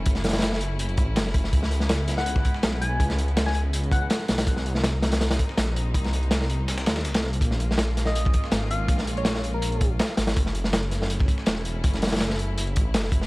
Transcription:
Already playing: F#3 A3 C#4 E4
0.06 F#1, kick, closed hi-hat
0.15 snare, closed hi-hat
0.24 snare, closed hi-hat
0.29 snare, closed hi-hat
0.33 snare, closed hi-hat
0.38 snare, closed hi-hat
0.42 snare, closed hi-hat
0.53 snare
0.61 closed hi-hat
0.79 F#1, closed hi-hat
0.89 closed hi-hat
0.97 A1, kick, closed hi-hat
1.16 F#1, snare, closed hi-hat
1.26 snare
1.34 kick, closed hi-hat
1.44 snare
1.53 C#2 G#3 B3, kick, closed hi-hat
1.63 snare
1.71 closed hi-hat
1.80 snare
1.89 snare, closed hi-hat
2.08 snare, closed hi-hat
2.17 F#5, snare
2.26 closed hi-hat
2.36 kick, snare
2.45 kick, closed hi-hat
2.54 snare
2.63 B1, snare, closed hi-hat
2.81 G#5, closed hi-hat
3.00 C#2, kick, closed hi-hat
3.10 snare, closed hi-hat
3.18 closed hi-hat
3.28 closed hi-hat
3.37 snare, closed hi-hat
3.46 G#5, snare
3.55 G#5, closed hi-hat
3.73 C#2, closed hi-hat
3.83 closed hi-hat
3.92 F#5, kick, closed hi-hat
4.01 F#5
4.10 snare, closed hi-hat
4.19 snare
4.28 B1, snare, closed hi-hat
4.38 snare, closed hi-hat
4.47 C2 G3 A#3 C4 D#4, kick, closed hi-hat
4.57 snare
4.66 closed hi-hat
4.75 snare
4.84 snare, closed hi-hat
5.02 snare, closed hi-hat
5.12 snare, closed hi-hat
5.21 snare, closed hi-hat
5.31 snare, closed hi-hat
5.39 kick, closed hi-hat
5.49 snare
5.58 A#1, snare, closed hi-hat
5.76 closed hi-hat
5.94 C2, kick, closed hi-hat
6.04 snare, closed hi-hat
6.13 closed hi-hat
6.23 closed hi-hat
6.31 snare, closed hi-hat
6.41 snare
6.49 closed hi-hat
6.68 C2, snare, closed hi-hat
6.78 snare, closed hi-hat
6.86 D#2, snare, closed hi-hat
6.96 snare, closed hi-hat
7.05 C2, snare, closed hi-hat
7.14 snare, closed hi-hat
7.24 snare
7.33 closed hi-hat
7.41 A#1 G#3 C#4 F4, kick, closed hi-hat
7.51 snare
7.60 closed hi-hat
7.71 snare
7.78 snare, closed hi-hat
7.97 snare, closed hi-hat
8.05 D#5, snare
8.15 closed hi-hat
8.25 kick, snare
8.33 kick, closed hi-hat
8.44 snare
8.52 G#1, snare, closed hi-hat
8.71 F5, closed hi-hat
8.88 A#1, kick, closed hi-hat
8.98 snare, closed hi-hat
9.07 closed hi-hat
9.17 C#5, closed hi-hat
9.25 snare, closed hi-hat
9.35 snare
9.44 closed hi-hat
9.54 A#4
9.62 A#1, closed hi-hat
9.72 closed hi-hat
9.81 kick, closed hi-hat
9.99 snare, closed hi-hat
10.09 snare
10.17 G#1, snare, closed hi-hat
10.27 snare, closed hi-hat
10.36 F#1 F#3 A3 C#4 E4, kick, closed hi-hat
10.46 snare
10.55 closed hi-hat
10.64 snare
10.73 snare, closed hi-hat
10.91 snare, closed hi-hat
11.02 snare
11.10 closed hi-hat
11.20 kick, snare
11.28 kick, closed hi-hat
11.38 snare
11.46 E1, snare, closed hi-hat
11.65 closed hi-hat
11.84 F#1, kick, closed hi-hat
11.93 snare, closed hi-hat
12.02 snare, closed hi-hat
12.07 snare, closed hi-hat
12.12 snare, closed hi-hat
12.16 snare, closed hi-hat
12.21 snare, closed hi-hat
12.30 snare
12.39 closed hi-hat
12.58 F#1, closed hi-hat
12.67 closed hi-hat
12.76 A1, kick, closed hi-hat
12.94 F#1, snare, closed hi-hat
13.04 snare
13.12 kick, closed hi-hat
13.21 snare

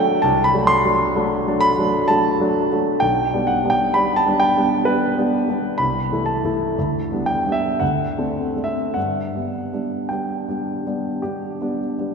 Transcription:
Already playing: F#3 A3 D4 E5 F#5 G5
0.22 C2 A5
0.44 B5
0.54 F#3 A3 D4
0.67 C6
0.85 F#3 A3 D4
1.16 F#3 A3 D4
1.47 F#3 A3 D4
1.61 B5
1.79 F#3 A3 D4
2.08 F#3 A3 D4 A5
2.40 F#3 A3 D4
2.72 F#3 A3 D4
3.00 B1 G5
3.34 G3 B3 D4
3.47 F#5
3.64 G3 B3 D4
3.70 G5
3.94 G3 B3 D4 B5
4.16 A5
4.26 G3 B3 D4
4.40 G5
4.57 G3 B3 D4
4.85 G3 B3 D4 B4
5.18 G3 B3 D4
5.49 G3 B3 D4
5.78 C2 B5
6.12 E3 A3 E4
6.26 A5
6.44 E3 A3 E4
6.79 D2
7.12 G3 B3 D4
7.26 G5
7.46 G3 B3 D4
7.52 E5
7.80 D2 F#5
8.18 A3 C4 D4
8.56 A3 C4 D4
8.64 E5
8.94 G2 F#5
9.35 G3 B3 D4
9.73 G3 B3 D4
10.09 G3 B3 D4 G5
10.48 G3 B3 D4
10.87 G3 B3 D4
11.22 G3 B3 D4 G4
11.61 G3 B3 D4
11.99 G3 B3 D4

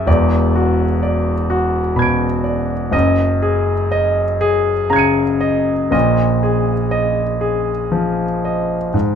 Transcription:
0.06 E1 E2 D5
0.55 F#4
1.03 D5
1.50 F#4
1.96 B2 B5 G#6
2.02 D7
2.44 D5
2.91 F#1 F#2 D#5
3.42 G#4
3.92 D#5
4.41 G#4
4.90 C#3 A#5 G#6
4.96 C#7 D#7
5.41 D#5
5.91 A#1 A#2 D#5
6.43 G#4
6.91 D#5
7.41 G#4
7.92 F3
8.45 D#5
8.94 G#2

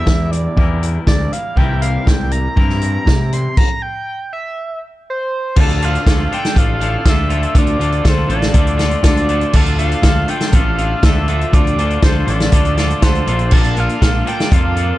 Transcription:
Already playing: E2 B2 D3 E3 G3 E4 G4 A#4 E5
0.06 E2, kick, snare
0.31 D5, closed hi-hat
0.56 E2 D3 E3 G3 E4 A#4, kick
0.83 closed hi-hat
1.06 D2 D5, kick, snare
1.32 F5, closed hi-hat
1.56 C2 C3 E3 G3 A#3 C4 E4 G4 A#4 G5, kick
1.82 F5, closed hi-hat
2.06 C2 G5, kick, snare
2.31 A#5, closed hi-hat
2.56 G2 C3 E3 G3 C4 E4 A#4 A#5, kick
2.69 snare
2.81 closed hi-hat
3.06 C3, kick, snare
3.33 C6, closed hi-hat
3.57 A#5, kick, crash
3.82 G5
4.33 E5
5.10 C5
5.56 D2 D3 A3 D4 F4 A4 D5 A5 D6, kick, crash
5.60 A5
5.69 closed hi-hat
5.82 D3 A3 D4 F4 A4 F5, closed hi-hat
5.95 closed hi-hat
6.06 D2 D3 A3 D4 F4 A4, kick, snare, closed hi-hat
6.31 D3 A3 D4 F4 A4 G5, closed hi-hat
6.45 snare, closed hi-hat
6.55 A1 D3 A3 D4 F4 A4 F5, kick, closed hi-hat
6.80 D3 A3 D4 F4 A4, closed hi-hat
7.05 D2 D3 A3 D4 F4 A4, kick, snare, closed hi-hat
7.09 E5
7.29 D3 A3 D4 F4 A4, closed hi-hat
7.43 closed hi-hat
7.55 D2 D3 A3 D4 F4 A4 D5, kick, closed hi-hat
7.67 closed hi-hat
7.79 D2 D3 A3 D4 F4 A4, closed hi-hat
7.92 closed hi-hat
8.04 D2 D3 A3 D4 F4 A4, kick, snare, closed hi-hat
8.09 C5
8.28 A1 D3 A3 D4 F4 A4 D5, closed hi-hat
8.42 snare, closed hi-hat
8.54 D2 D3 A3 D4 F4 A4, kick, closed hi-hat
8.67 closed hi-hat
8.77 D3 A3 D4 F4 A4, snare, closed hi-hat
8.91 closed hi-hat
9.03 D2 D3 A3 D4 F4 A4, kick, snare, closed hi-hat
9.07 D5
9.17 closed hi-hat
9.28 D3 A3 D4 F4 A4, closed hi-hat
9.41 closed hi-hat
9.53 D2 D3 A3 D4 F4 A4 A5, kick, crash
9.66 closed hi-hat
9.78 D3 A3 D4 F4 A4 F5, closed hi-hat
9.92 closed hi-hat
10.02 D2 D3 A3 D4 F4 A4, kick, snare, closed hi-hat
10.28 D3 A3 D4 F4 A4 G5, closed hi-hat
10.40 snare, closed hi-hat
10.52 A1 D3 A3 D4 F4 A4 F5, kick, closed hi-hat
10.77 D3 A3 D4 F4 A4, closed hi-hat
11.03 D2 D3 A3 D4 F4 A4 E5, kick, snare, closed hi-hat
11.28 D3 A3 D4 F4 A4, closed hi-hat
11.41 closed hi-hat
11.53 D2 D3 A3 D4 F4 A4 D5, kick, closed hi-hat
11.67 closed hi-hat
11.77 D2 D3 A3 D4 F4 A4, closed hi-hat
11.90 closed hi-hat
12.02 D2 D3 A3 D4 F4 A4 C5, kick, snare, closed hi-hat
12.26 A1 D3 A3 D4 F4 D5, closed hi-hat
12.30 A4
12.40 snare, closed hi-hat
12.52 D2 D3 A3 D4 F4 A4, kick, closed hi-hat
12.65 closed hi-hat
12.77 D3 A3 D4 F4 A4, snare, closed hi-hat
12.90 closed hi-hat
13.02 D2 D3 A3 D4 F4 A4 C5, kick, snare, closed hi-hat
13.15 closed hi-hat
13.26 A#1 A#2 D3 A#3 D4 F4 A4 A#4, closed hi-hat
13.39 closed hi-hat
13.51 A#2 D3 A#3 D4 F4 A4 A5, kick, crash
13.64 closed hi-hat
13.76 A#2 D3 A#3 D4 F4 A4 F5, closed hi-hat
13.89 closed hi-hat
14.01 A#1 A#2 D3 A#3 D4 F4 A4, kick, snare, closed hi-hat
14.25 A#2 D3 A#3 D4 F4 A4 G5, closed hi-hat
14.40 snare, closed hi-hat
14.51 F2 A#2 D3 A#3 D4 F4 A4 F5, kick, closed hi-hat
14.75 A#2 D3 A#3 D4 F4 A4, closed hi-hat

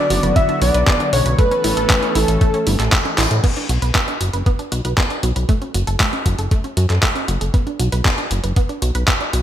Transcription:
Already playing: D3 F#3 B3 F#4 D5
0.10 F#1 F#4, open hi-hat
0.23 F#1 B4, closed hi-hat
0.36 B3 E5, kick, closed hi-hat
0.49 D4, closed hi-hat
0.62 B1 F#4 D5, open hi-hat
0.74 B1 B4, closed hi-hat
0.87 B3, kick, clap, closed hi-hat
1.00 D4, closed hi-hat
1.13 B1 F#4 C#5, open hi-hat
1.26 B1 B4, closed hi-hat
1.38 E3 A3 C#4 A4 B4, kick, closed hi-hat
1.51 C#4, closed hi-hat
1.64 A1 E4, open hi-hat
1.77 A1 A4, closed hi-hat
1.90 A3, kick, clap, closed hi-hat
2.03 C#4, closed hi-hat
2.15 A1 E4 A4, open hi-hat
2.28 A1 A4, closed hi-hat
2.41 A3, kick, closed hi-hat
2.54 C#4, closed hi-hat
2.67 G1 E4, open hi-hat
2.80 A1 A4, clap, closed hi-hat
2.92 A3, kick, clap, closed hi-hat
3.05 C#4, closed hi-hat
3.18 A1 E4, clap, open hi-hat
3.31 A2 A4, closed hi-hat
3.44 B3, kick, closed hi-hat, crash
3.57 D4, closed hi-hat
3.69 B1 F#4, closed hi-hat
3.82 B1 B4, closed hi-hat
3.95 B3, kick, clap, closed hi-hat
4.08 D4, closed hi-hat
4.21 F#1 F#4, closed hi-hat
4.33 F#1 B4, closed hi-hat
4.46 B3, kick, closed hi-hat
4.59 D4, closed hi-hat
4.72 B1 F#4, closed hi-hat
4.85 B1 B4, closed hi-hat
4.98 B3, kick, clap, closed hi-hat
5.10 D4, closed hi-hat
5.23 B1 F#4, closed hi-hat
5.36 B1 B4, closed hi-hat
5.49 A3, kick, closed hi-hat
5.62 C#4, closed hi-hat
5.74 F#1 F#4, closed hi-hat
5.87 F#1 A4, closed hi-hat
6.00 A3, kick, clap, closed hi-hat
6.13 C#4, closed hi-hat
6.26 F#1 F#4, kick, closed hi-hat
6.38 F#1 A4, closed hi-hat
6.51 A3, kick, closed hi-hat
6.64 C#4, closed hi-hat
6.77 F#2 F#4, closed hi-hat
6.90 F#2 A4, clap, closed hi-hat
7.03 A3, kick, clap, closed hi-hat
7.15 C#4, closed hi-hat
7.28 F#1 F#4, closed hi-hat
7.41 F#1 A4, closed hi-hat
7.54 B3, kick, closed hi-hat
7.67 D4, closed hi-hat
7.79 B1 F#4, closed hi-hat
7.92 B1 B4, closed hi-hat
8.05 B3, kick, clap, closed hi-hat
8.18 D4, closed hi-hat
8.31 F#1 F#4, closed hi-hat
8.44 F#1 B4, closed hi-hat
8.56 B3, kick, closed hi-hat
8.69 D4, closed hi-hat
8.82 B1 F#4, closed hi-hat
8.95 B1 B4, closed hi-hat
9.08 B3, kick, clap, closed hi-hat
9.21 D4, closed hi-hat
9.33 B1 F#4, closed hi-hat

